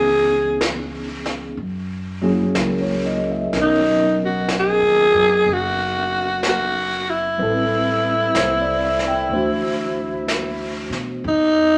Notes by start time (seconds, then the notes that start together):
Already playing: C#2 E3 B3 C#4 D#4 G#4
0.61 brush sweep, snare, hi-hat pedal
1.26 snare
1.57 F#2, brush sweep
2.22 F#3 A#3 C#4 E4 G#4
2.55 C#2 A#4, brush sweep, snare, hi-hat pedal
2.81 C#5
3.06 D#5
3.32 E5
3.53 B1 F#3 B3 C#4 A#4 D#5, brush sweep, snare
3.62 D#4
4.25 F#4
4.49 brush sweep, snare, hi-hat pedal
4.60 G#4
4.82 D#2
5.14 F#2
5.46 F#1, brush sweep
5.53 F#4
6.43 brush sweep, snare, hi-hat pedal
6.48 F#4
7.10 E4
7.38 A1 G3 C4 E4 B4, brush sweep
7.43 A4
8.35 C2 C5, brush sweep, snare, hi-hat pedal
8.62 D5
8.85 E5
8.99 snare
9.08 G5
9.29 D2 E3 A3 C5, brush sweep
9.33 D4 F#4
10.28 brush sweep, snare, hi-hat pedal
10.90 B2, snare
11.24 E2, brush sweep
11.28 D#4